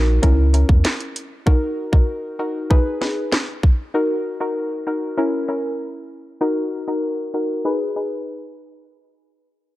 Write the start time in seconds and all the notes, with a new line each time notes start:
Already playing: A#1 D#4 F#4 A#4
0.22 C#2 C#4 E4 A#4, kick, closed hi-hat
0.53 C#4 E4 A#4, closed hi-hat
0.69 E2, kick
0.85 snare, clap, closed hi-hat
1.00 closed hi-hat
1.16 closed hi-hat
1.46 D#4 F#4 A#4, kick
1.92 D#4 F#4 A#4, kick
2.39 D#4 F#4 A#4
2.70 D#4 G#4 B4, kick
3.01 D#4 G#4 B4, snare
3.32 snare, clap
3.63 kick
3.94 D#4 F#4 A#4
4.40 D#4 F#4 A#4
4.87 D#4 F#4 A#4
5.17 C#4 E4 A#4
5.48 C#4 E4 A#4
6.41 D#4 F#4 A#4
6.88 D#4 F#4 A#4
7.34 D#4 F#4 A#4
7.65 D#4 G#4 B4
7.96 D#4 G#4 B4